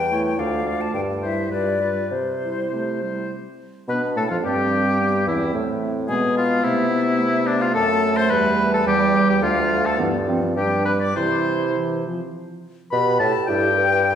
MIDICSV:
0, 0, Header, 1, 6, 480
1, 0, Start_track
1, 0, Key_signature, 0, "major"
1, 0, Tempo, 562852
1, 804, Time_signature, 2, 2, 24, 8
1, 1293, Tempo, 600601
1, 2733, Tempo, 555556
1, 8493, Tempo, 593472
1, 10413, Tempo, 560224
1, 11948, End_track
2, 0, Start_track
2, 0, Title_t, "Flute"
2, 0, Program_c, 0, 73
2, 0, Note_on_c, 0, 79, 77
2, 205, Note_off_c, 0, 79, 0
2, 219, Note_on_c, 0, 79, 71
2, 334, Note_on_c, 0, 77, 70
2, 347, Note_off_c, 0, 79, 0
2, 691, Note_on_c, 0, 81, 73
2, 704, Note_off_c, 0, 77, 0
2, 799, Note_off_c, 0, 81, 0
2, 804, Note_on_c, 0, 79, 69
2, 859, Note_off_c, 0, 79, 0
2, 1047, Note_on_c, 0, 76, 66
2, 1289, Note_off_c, 0, 76, 0
2, 1295, Note_on_c, 0, 74, 59
2, 1766, Note_on_c, 0, 72, 50
2, 1778, Note_off_c, 0, 74, 0
2, 2497, Note_off_c, 0, 72, 0
2, 3219, Note_on_c, 0, 83, 63
2, 3274, Note_off_c, 0, 83, 0
2, 3464, Note_on_c, 0, 81, 60
2, 3571, Note_on_c, 0, 77, 59
2, 3584, Note_off_c, 0, 81, 0
2, 3694, Note_on_c, 0, 79, 62
2, 3707, Note_off_c, 0, 77, 0
2, 4420, Note_on_c, 0, 76, 56
2, 4433, Note_off_c, 0, 79, 0
2, 4658, Note_off_c, 0, 76, 0
2, 5118, Note_on_c, 0, 80, 69
2, 5172, Note_off_c, 0, 80, 0
2, 5366, Note_on_c, 0, 77, 73
2, 5605, Note_on_c, 0, 76, 66
2, 5618, Note_off_c, 0, 77, 0
2, 6310, Note_on_c, 0, 74, 80
2, 6323, Note_off_c, 0, 76, 0
2, 6421, Note_off_c, 0, 74, 0
2, 6426, Note_on_c, 0, 77, 76
2, 6478, Note_off_c, 0, 77, 0
2, 6558, Note_on_c, 0, 81, 90
2, 6912, Note_on_c, 0, 84, 81
2, 6925, Note_off_c, 0, 81, 0
2, 7032, Note_on_c, 0, 83, 78
2, 7045, Note_off_c, 0, 84, 0
2, 7396, Note_on_c, 0, 81, 86
2, 7409, Note_off_c, 0, 83, 0
2, 7530, Note_on_c, 0, 79, 86
2, 7543, Note_off_c, 0, 81, 0
2, 7892, Note_off_c, 0, 79, 0
2, 7897, Note_on_c, 0, 79, 76
2, 8013, Note_on_c, 0, 77, 79
2, 8026, Note_off_c, 0, 79, 0
2, 8369, Note_on_c, 0, 81, 74
2, 8382, Note_off_c, 0, 77, 0
2, 8492, Note_off_c, 0, 81, 0
2, 8956, Note_on_c, 0, 79, 76
2, 9203, Note_on_c, 0, 83, 75
2, 9215, Note_off_c, 0, 79, 0
2, 9325, Note_on_c, 0, 86, 79
2, 9337, Note_off_c, 0, 83, 0
2, 9451, Note_on_c, 0, 84, 68
2, 9463, Note_off_c, 0, 86, 0
2, 9936, Note_off_c, 0, 84, 0
2, 10903, Note_on_c, 0, 83, 77
2, 11126, Note_off_c, 0, 83, 0
2, 11137, Note_on_c, 0, 81, 86
2, 11368, Note_on_c, 0, 79, 80
2, 11381, Note_off_c, 0, 81, 0
2, 11948, Note_off_c, 0, 79, 0
2, 11948, End_track
3, 0, Start_track
3, 0, Title_t, "Oboe"
3, 0, Program_c, 1, 68
3, 98, Note_on_c, 1, 73, 51
3, 327, Note_off_c, 1, 73, 0
3, 333, Note_on_c, 1, 74, 46
3, 563, Note_off_c, 1, 74, 0
3, 570, Note_on_c, 1, 74, 47
3, 802, Note_off_c, 1, 74, 0
3, 1041, Note_on_c, 1, 72, 48
3, 1284, Note_off_c, 1, 72, 0
3, 1289, Note_on_c, 1, 71, 37
3, 1523, Note_off_c, 1, 71, 0
3, 1530, Note_on_c, 1, 71, 36
3, 1766, Note_off_c, 1, 71, 0
3, 2019, Note_on_c, 1, 72, 36
3, 2491, Note_off_c, 1, 72, 0
3, 2500, Note_on_c, 1, 72, 31
3, 2729, Note_off_c, 1, 72, 0
3, 3231, Note_on_c, 1, 71, 71
3, 3338, Note_off_c, 1, 71, 0
3, 3470, Note_on_c, 1, 69, 73
3, 3522, Note_off_c, 1, 69, 0
3, 3587, Note_on_c, 1, 65, 62
3, 3640, Note_off_c, 1, 65, 0
3, 3709, Note_on_c, 1, 67, 91
3, 4412, Note_off_c, 1, 67, 0
3, 4426, Note_on_c, 1, 64, 61
3, 4657, Note_off_c, 1, 64, 0
3, 5129, Note_on_c, 1, 68, 89
3, 5349, Note_off_c, 1, 68, 0
3, 5372, Note_on_c, 1, 65, 88
3, 5601, Note_on_c, 1, 64, 86
3, 5614, Note_off_c, 1, 65, 0
3, 6318, Note_on_c, 1, 62, 91
3, 6331, Note_off_c, 1, 64, 0
3, 6445, Note_on_c, 1, 65, 86
3, 6458, Note_off_c, 1, 62, 0
3, 6550, Note_off_c, 1, 65, 0
3, 6556, Note_on_c, 1, 69, 101
3, 6925, Note_on_c, 1, 72, 101
3, 6938, Note_off_c, 1, 69, 0
3, 7042, Note_on_c, 1, 71, 91
3, 7055, Note_off_c, 1, 72, 0
3, 7407, Note_off_c, 1, 71, 0
3, 7414, Note_on_c, 1, 69, 86
3, 7526, Note_off_c, 1, 69, 0
3, 7531, Note_on_c, 1, 67, 113
3, 7885, Note_off_c, 1, 67, 0
3, 7899, Note_on_c, 1, 67, 91
3, 7951, Note_off_c, 1, 67, 0
3, 8016, Note_on_c, 1, 65, 100
3, 8384, Note_on_c, 1, 69, 86
3, 8397, Note_off_c, 1, 65, 0
3, 8499, Note_off_c, 1, 69, 0
3, 8969, Note_on_c, 1, 67, 77
3, 9186, Note_off_c, 1, 67, 0
3, 9198, Note_on_c, 1, 71, 90
3, 9252, Note_off_c, 1, 71, 0
3, 9318, Note_on_c, 1, 74, 83
3, 9439, Note_off_c, 1, 74, 0
3, 9442, Note_on_c, 1, 72, 78
3, 9923, Note_off_c, 1, 72, 0
3, 10893, Note_on_c, 1, 83, 93
3, 11120, Note_off_c, 1, 83, 0
3, 11130, Note_on_c, 1, 81, 98
3, 11241, Note_off_c, 1, 81, 0
3, 11363, Note_on_c, 1, 79, 103
3, 11948, Note_off_c, 1, 79, 0
3, 11948, End_track
4, 0, Start_track
4, 0, Title_t, "Clarinet"
4, 0, Program_c, 2, 71
4, 96, Note_on_c, 2, 64, 50
4, 327, Note_off_c, 2, 64, 0
4, 342, Note_on_c, 2, 65, 41
4, 568, Note_off_c, 2, 65, 0
4, 574, Note_on_c, 2, 65, 40
4, 803, Note_off_c, 2, 65, 0
4, 1056, Note_on_c, 2, 64, 43
4, 1294, Note_off_c, 2, 64, 0
4, 1307, Note_on_c, 2, 65, 33
4, 1532, Note_off_c, 2, 65, 0
4, 1544, Note_on_c, 2, 65, 33
4, 1773, Note_off_c, 2, 65, 0
4, 2016, Note_on_c, 2, 64, 34
4, 2490, Note_off_c, 2, 64, 0
4, 2498, Note_on_c, 2, 64, 25
4, 2728, Note_off_c, 2, 64, 0
4, 3238, Note_on_c, 2, 62, 53
4, 3677, Note_off_c, 2, 62, 0
4, 3702, Note_on_c, 2, 60, 63
4, 4175, Note_on_c, 2, 59, 54
4, 4188, Note_off_c, 2, 60, 0
4, 4413, Note_off_c, 2, 59, 0
4, 4419, Note_on_c, 2, 60, 56
4, 4643, Note_on_c, 2, 57, 65
4, 4656, Note_off_c, 2, 60, 0
4, 5120, Note_off_c, 2, 57, 0
4, 5126, Note_on_c, 2, 56, 57
4, 5591, Note_on_c, 2, 57, 71
4, 5604, Note_off_c, 2, 56, 0
4, 5820, Note_on_c, 2, 59, 68
4, 5833, Note_off_c, 2, 57, 0
4, 6074, Note_on_c, 2, 57, 65
4, 6087, Note_off_c, 2, 59, 0
4, 7526, Note_off_c, 2, 57, 0
4, 7530, Note_on_c, 2, 55, 85
4, 8000, Note_off_c, 2, 55, 0
4, 8005, Note_on_c, 2, 57, 66
4, 8480, Note_off_c, 2, 57, 0
4, 8492, Note_on_c, 2, 59, 80
4, 8595, Note_off_c, 2, 59, 0
4, 8726, Note_on_c, 2, 60, 74
4, 8831, Note_off_c, 2, 60, 0
4, 8953, Note_on_c, 2, 62, 62
4, 9261, Note_off_c, 2, 62, 0
4, 9442, Note_on_c, 2, 64, 74
4, 10143, Note_off_c, 2, 64, 0
4, 10892, Note_on_c, 2, 71, 77
4, 11120, Note_off_c, 2, 71, 0
4, 11137, Note_on_c, 2, 69, 72
4, 11374, Note_off_c, 2, 69, 0
4, 11380, Note_on_c, 2, 67, 93
4, 11948, Note_off_c, 2, 67, 0
4, 11948, End_track
5, 0, Start_track
5, 0, Title_t, "French horn"
5, 0, Program_c, 3, 60
5, 87, Note_on_c, 3, 57, 47
5, 320, Note_off_c, 3, 57, 0
5, 325, Note_on_c, 3, 57, 43
5, 557, Note_off_c, 3, 57, 0
5, 562, Note_on_c, 3, 57, 47
5, 797, Note_off_c, 3, 57, 0
5, 1039, Note_on_c, 3, 55, 44
5, 1282, Note_off_c, 3, 55, 0
5, 1287, Note_on_c, 3, 55, 40
5, 1516, Note_off_c, 3, 55, 0
5, 1520, Note_on_c, 3, 55, 39
5, 1761, Note_off_c, 3, 55, 0
5, 2012, Note_on_c, 3, 55, 32
5, 2204, Note_off_c, 3, 55, 0
5, 2256, Note_on_c, 3, 57, 39
5, 2497, Note_on_c, 3, 55, 35
5, 2509, Note_off_c, 3, 57, 0
5, 2732, Note_off_c, 3, 55, 0
5, 3219, Note_on_c, 3, 59, 64
5, 3329, Note_off_c, 3, 59, 0
5, 3463, Note_on_c, 3, 57, 60
5, 3517, Note_off_c, 3, 57, 0
5, 3581, Note_on_c, 3, 53, 62
5, 3635, Note_off_c, 3, 53, 0
5, 3705, Note_on_c, 3, 55, 70
5, 4424, Note_on_c, 3, 52, 63
5, 4437, Note_off_c, 3, 55, 0
5, 4655, Note_off_c, 3, 52, 0
5, 4660, Note_on_c, 3, 60, 51
5, 5123, Note_on_c, 3, 59, 61
5, 5136, Note_off_c, 3, 60, 0
5, 6555, Note_on_c, 3, 57, 62
5, 6568, Note_off_c, 3, 59, 0
5, 7040, Note_on_c, 3, 55, 73
5, 7053, Note_off_c, 3, 57, 0
5, 7517, Note_off_c, 3, 55, 0
5, 7522, Note_on_c, 3, 55, 68
5, 8016, Note_on_c, 3, 57, 68
5, 8029, Note_off_c, 3, 55, 0
5, 8491, Note_off_c, 3, 57, 0
5, 8496, Note_on_c, 3, 52, 74
5, 8599, Note_off_c, 3, 52, 0
5, 8725, Note_on_c, 3, 53, 66
5, 8960, Note_on_c, 3, 55, 56
5, 8972, Note_off_c, 3, 53, 0
5, 9436, Note_off_c, 3, 55, 0
5, 9441, Note_on_c, 3, 52, 55
5, 9874, Note_off_c, 3, 52, 0
5, 9932, Note_on_c, 3, 52, 64
5, 10159, Note_off_c, 3, 52, 0
5, 10175, Note_on_c, 3, 53, 64
5, 10282, Note_off_c, 3, 53, 0
5, 10902, Note_on_c, 3, 67, 71
5, 11376, Note_on_c, 3, 64, 71
5, 11389, Note_off_c, 3, 67, 0
5, 11618, Note_on_c, 3, 71, 86
5, 11631, Note_off_c, 3, 64, 0
5, 11948, Note_off_c, 3, 71, 0
5, 11948, End_track
6, 0, Start_track
6, 0, Title_t, "Bassoon"
6, 0, Program_c, 4, 70
6, 0, Note_on_c, 4, 40, 65
6, 273, Note_off_c, 4, 40, 0
6, 330, Note_on_c, 4, 38, 63
6, 748, Note_off_c, 4, 38, 0
6, 800, Note_on_c, 4, 43, 62
6, 1233, Note_off_c, 4, 43, 0
6, 1291, Note_on_c, 4, 43, 53
6, 1713, Note_off_c, 4, 43, 0
6, 1771, Note_on_c, 4, 48, 42
6, 2127, Note_off_c, 4, 48, 0
6, 2256, Note_on_c, 4, 48, 38
6, 2678, Note_off_c, 4, 48, 0
6, 3222, Note_on_c, 4, 47, 72
6, 3462, Note_on_c, 4, 45, 72
6, 3475, Note_off_c, 4, 47, 0
6, 3579, Note_off_c, 4, 45, 0
6, 3584, Note_on_c, 4, 41, 63
6, 3701, Note_on_c, 4, 43, 73
6, 3714, Note_off_c, 4, 41, 0
6, 4414, Note_off_c, 4, 43, 0
6, 4419, Note_on_c, 4, 40, 58
6, 4648, Note_off_c, 4, 40, 0
6, 4654, Note_on_c, 4, 45, 62
6, 5124, Note_on_c, 4, 47, 70
6, 5137, Note_off_c, 4, 45, 0
6, 5593, Note_off_c, 4, 47, 0
6, 5598, Note_on_c, 4, 48, 64
6, 6539, Note_off_c, 4, 48, 0
6, 6557, Note_on_c, 4, 42, 70
6, 7042, Note_on_c, 4, 40, 77
6, 7055, Note_off_c, 4, 42, 0
6, 7521, Note_off_c, 4, 40, 0
6, 7526, Note_on_c, 4, 40, 78
6, 8005, Note_on_c, 4, 38, 80
6, 8018, Note_off_c, 4, 40, 0
6, 8490, Note_on_c, 4, 43, 69
6, 8502, Note_off_c, 4, 38, 0
6, 8956, Note_off_c, 4, 43, 0
6, 8960, Note_on_c, 4, 43, 74
6, 9433, Note_off_c, 4, 43, 0
6, 9445, Note_on_c, 4, 48, 62
6, 10163, Note_off_c, 4, 48, 0
6, 10899, Note_on_c, 4, 47, 90
6, 11124, Note_off_c, 4, 47, 0
6, 11135, Note_on_c, 4, 45, 82
6, 11244, Note_off_c, 4, 45, 0
6, 11381, Note_on_c, 4, 43, 89
6, 11948, Note_off_c, 4, 43, 0
6, 11948, End_track
0, 0, End_of_file